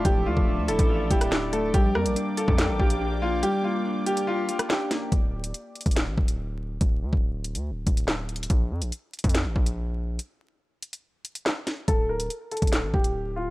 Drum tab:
HH |x-----------------------------------x-----x-----------------x-----x-----------------x-----------|x-----------------x-----x-----------x-----------x-----------------x-----------------------------|x-----------------------------------x-----x-----------------x-----x-----------------x-----------|x-----------------x-----x-----------x--x--x--x--x-----------------x-----------------------------|
CP |------------------------------------------------------------------------x-----------------------|------------------------------------------------x-----------------------------------------------|------------------------------------------------------------------------x-----------------------|------------------------------------------------x-----------------------------------------------|
SD |------------------------------------------------------------------r-----o-----------------------|------------r-----------------------------------o-----------------------------------------------|------------------------------------------------------------------r-----o-----------o-----------|------------------------------------------------o-----------------------------------------------|
BD |o-----------------o-----------------------o-----------------o-----------------------------------|o-----------------------------------------o-----------------o-----------------------------------|------------------------------------------------------------------------------------------------|o-----------------------------------------o-----------------o-----------------------------------|

HH |x-----------------------------------x-----x-----------------x-----x-----------------x---x---x---|x-----------------x-----x-----------x--x--x--x--x-----------------x-----------------------------|x-----------------------------------x-----x-----------------x-----x-----------------x-----------|x-----------------x-----x-----------x--x--x--x--x-----------------x-----------------------------|
CP |------------------------------------------------------------------------x-----------------------|------------------------------------------------x-----------------------------------------------|------------------------------------------------------------------------x-----------------------|------------------------------------------------x-----------------------------------------------|
SD |------------------------------------------------------------------------o-----------------------|------------------------------------------------o-----------------------------------------------|------------------------------------------------------------------------o-----------o-----------|------------------------------------------------o-----------------------------------------------|
BD |o-----------------o-----------------------------------------o-----------------------------------|o-----------------------------------------o-----------------o-----------------------------------|------------------------------------------------------------------------------------------------|o-----------------------------------------o-----------------o-----------------------------------|